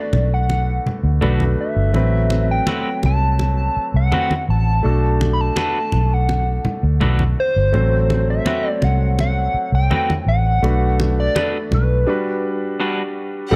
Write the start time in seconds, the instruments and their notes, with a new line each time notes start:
Already playing: grand piano A3 D4 F#4 B4, analog synth lead D5
0.13 fingered electric bass B1, muted conga, low conga
0.34 analog synth lead F#5
0.50 muted conga
0.86 muted fingered electric bass stroke, low conga
1.03 fingered electric bass D2
1.21 fingered electric bass B1, grand piano A3 D4 F#4 B4, clean electric guitar A3 D4 F#4 B4, high conga
1.40 high conga
1.61 analog synth lead E5
1.76 fingered electric bass G1
1.92 fingered electric bass A1, grand piano F#3 A3 C4 B4, muted conga
2.30 muted conga
2.51 analog synth lead G5
2.67 clean electric guitar A3 C4 F#4 B4, high conga
3.03 fingered electric bass C2, analog synth lead A5, muted conga
3.39 muted conga
3.77 muted fingered electric bass stroke
3.94 fingered electric bass C2, analog synth lead F#5
4.12 clean electric guitar A3 C4 F#4 B4, high conga
4.31 high conga
4.49 fingered electric bass A1, analog synth lead A5
4.83 fingered electric bass B1, grand piano A3 D4 F#4 A4
5.21 muted conga
5.33 analog synth lead B5
5.41 analog synth lead A5
5.56 clean electric guitar A3 D4 F#4 B4, high conga
5.92 fingered electric bass B1, muted conga, low conga
6.14 analog synth lead F#5
6.29 muted conga
6.65 muted fingered electric bass stroke, low conga
6.83 fingered electric bass D2
7.01 fingered electric bass B1, clean electric guitar A3 D4 F#4 B4, high conga
7.19 high conga
7.40 analog synth lead C5
7.56 fingered electric bass G1
7.72 fingered electric bass A1, grand piano F#3 A3 C4 C5, muted conga
8.10 muted conga
8.30 analog synth lead E5
8.46 clean electric guitar A3 C4 F#4 B4, high conga
8.69 analog synth lead D5
8.82 fingered electric bass C2, analog synth lead F#5, muted conga
9.19 analog synth lead F#5, muted conga
9.54 muted fingered electric bass stroke
9.72 fingered electric bass C2, analog synth lead G5
9.91 clean electric guitar A3 C4 F#4 B4, high conga
10.10 high conga
10.26 fingered electric bass A1, analog synth lead F#5
10.62 fingered electric bass B1, grand piano A3 D4 F#4 B4, muted conga
11.00 muted conga
11.20 analog synth lead D5
11.35 clean electric guitar A3 D4 F#4 B4, high conga
11.71 fingered electric bass B1, analog synth lead B4, muted conga, low conga
12.07 grand piano G3 D4 F#4 B4
12.80 clean electric guitar G3 D4 F#4 B4
13.51 fingered electric bass A1, grand piano G3 A3 C4, violin section G4 F#5